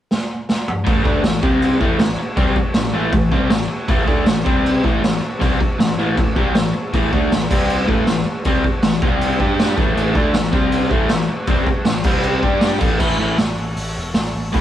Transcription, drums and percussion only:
0.11 snare medium
0.49 snare medium
0.68 mid tom loud
0.87 kick loud
0.87 crash medium
1.05 kick medium
1.24 snare loud
1.24 crash medium
1.43 kick loud
1.62 crash medium
1.81 kick medium
1.99 snare loud
1.99 crash medium
2.37 kick loud
2.37 crash medium
2.56 kick medium
2.74 snare loud
2.74 crash medium
3.12 kick loud
3.12 crash medium
3.32 kick medium
3.50 snare loud
3.50 crash medium
3.88 kick loud
3.88 crash medium
4.08 kick medium
4.26 snare loud
4.26 crash medium
4.46 kick loud
4.66 crash medium
4.84 kick medium
5.04 snare loud
5.04 crash medium
5.41 kick loud
5.41 crash medium
5.61 kick medium
5.80 snare loud
5.80 crash medium
6.17 kick loud
6.17 crash medium
6.36 kick medium
6.55 snare loud
6.55 crash medium
6.94 kick loud
6.94 crash medium
7.13 kick medium
7.32 snare loud
7.32 crash medium
7.51 kick loud
7.51 crash loud
7.70 crash medium
7.89 kick medium
8.07 snare loud
8.07 crash medium
8.45 kick loud
8.45 crash medium
8.64 kick medium
8.82 snare loud
8.82 crash medium
9.02 kick loud
9.21 crash medium
9.40 kick medium
9.59 snare loud
9.59 crash medium
9.78 kick loud
9.97 crash medium
10.15 kick medium
10.34 snare loud
10.34 crash medium
10.53 kick loud
10.72 crash medium
10.91 kick medium
11.09 snare loud
11.09 crash medium
11.47 kick loud
11.47 crash medium
11.67 kick medium
11.85 snare loud
11.85 crash medium
12.04 kick loud
12.04 crash loud
12.23 crash medium
12.43 kick medium
12.61 snare loud
12.61 crash medium
12.80 kick loud
12.80 crash medium
13.00 kick loud
13.00 crash loud
13.38 snare loud
13.38 open hi-hat medium
13.76 open hi-hat medium
14.14 snare loud
14.14 open hi-hat medium
14.54 kick loud
14.54 open hi-hat medium

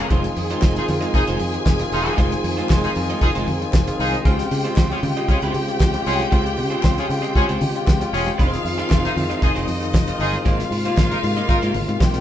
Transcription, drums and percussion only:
0.10 kick medium
0.10 closed hi-hat medium
0.10 muted conga medium
0.24 closed hi-hat soft
0.36 open hi-hat medium
0.36 muted conga soft
0.50 closed hi-hat soft
0.61 kick loud
0.61 snare loud
0.61 clap loud
0.61 high conga medium
0.76 closed hi-hat soft
0.88 open hi-hat medium
0.88 low conga medium
1.02 closed hi-hat medium
1.14 kick loud
1.14 closed hi-hat medium
1.14 muted conga medium
1.27 closed hi-hat soft
1.39 open hi-hat medium
1.39 muted conga medium
1.54 closed hi-hat medium
1.66 kick loud
1.66 snare loud
1.66 clap medium
1.66 high conga medium
1.79 closed hi-hat medium
1.92 open hi-hat medium
2.05 closed hi-hat soft
2.05 high conga medium
2.18 kick loud
2.18 closed hi-hat medium
2.18 muted conga medium
2.32 closed hi-hat soft
2.44 open hi-hat medium
2.44 muted conga soft
2.58 closed hi-hat soft
2.69 kick loud
2.69 snare loud
2.69 clap loud
2.69 high conga medium
2.84 closed hi-hat soft
2.96 open hi-hat medium
3.10 closed hi-hat medium
3.21 kick loud
3.21 closed hi-hat medium
3.21 muted conga medium
3.35 closed hi-hat soft
3.47 open hi-hat medium
3.47 muted conga medium
3.47 low conga medium
3.62 closed hi-hat soft
3.73 kick loud
3.73 snare loud
3.73 clap loud
3.73 high conga medium
3.87 closed hi-hat medium
4.00 open hi-hat medium
4.12 closed hi-hat soft
4.12 high conga medium
4.25 kick loud
4.25 closed hi-hat medium
4.25 muted conga medium
4.39 snare soft
4.39 closed hi-hat soft
4.51 open hi-hat medium
4.65 closed hi-hat soft
4.76 kick loud
4.76 snare loud
4.76 clap loud
4.76 high conga medium
4.91 closed hi-hat soft
5.03 open hi-hat medium
5.03 low conga medium
5.17 closed hi-hat medium
5.29 kick loud
5.29 closed hi-hat medium
5.29 muted conga medium
5.42 closed hi-hat soft
5.54 open hi-hat medium
5.54 muted conga medium
5.68 closed hi-hat soft
5.80 kick loud
5.80 snare loud
5.80 clap loud
5.80 high conga medium
5.94 closed hi-hat medium
6.06 open hi-hat medium
6.19 closed hi-hat soft
6.19 high conga medium
6.32 kick loud
6.32 closed hi-hat medium
6.32 muted conga medium
6.46 closed hi-hat medium
6.57 open hi-hat medium
6.57 muted conga soft
6.72 closed hi-hat soft
6.83 kick loud
6.83 snare loud
6.83 clap loud
6.83 high conga medium
6.98 closed hi-hat medium
7.10 open hi-hat medium
7.24 closed hi-hat medium
7.35 kick medium
7.35 closed hi-hat medium
7.35 muted conga medium
7.49 closed hi-hat soft
7.61 open hi-hat medium
7.61 muted conga medium
7.61 low conga medium
7.76 closed hi-hat medium
7.87 kick loud
7.87 snare loud
7.87 clap loud
7.87 high conga medium
8.01 closed hi-hat medium
8.14 open hi-hat medium
8.27 closed hi-hat soft
8.27 high conga medium
8.39 kick loud
8.39 closed hi-hat medium
8.39 muted conga medium
8.53 snare soft
8.53 closed hi-hat medium
8.66 open hi-hat medium
8.79 closed hi-hat soft
8.90 kick loud
8.90 snare loud
8.90 clap loud
8.90 high conga medium
9.05 closed hi-hat medium
9.16 open hi-hat medium
9.16 low conga medium
9.31 closed hi-hat medium
9.42 kick loud
9.42 closed hi-hat medium
9.42 muted conga medium
9.56 closed hi-hat soft
9.68 open hi-hat medium
9.68 muted conga medium
9.82 closed hi-hat medium
9.94 kick loud
9.94 snare loud
9.94 clap medium
9.94 high conga medium
10.07 closed hi-hat medium
10.20 open hi-hat medium
10.33 closed hi-hat soft
10.33 high conga medium
10.45 kick loud
10.45 closed hi-hat medium
10.45 muted conga medium
10.60 snare soft
10.60 closed hi-hat soft
10.71 open hi-hat medium
10.71 muted conga soft
10.85 closed hi-hat soft
10.97 kick loud
10.97 snare loud
10.97 clap medium
10.97 high conga medium
11.11 closed hi-hat soft
11.24 open hi-hat medium
11.37 closed hi-hat medium
11.49 kick loud
11.49 closed hi-hat medium
11.49 muted conga medium
11.63 closed hi-hat soft
11.74 open hi-hat medium
11.74 muted conga medium
11.74 low conga medium
11.89 closed hi-hat soft
12.01 kick loud
12.01 snare loud
12.01 clap loud
12.01 high conga medium
12.14 closed hi-hat medium

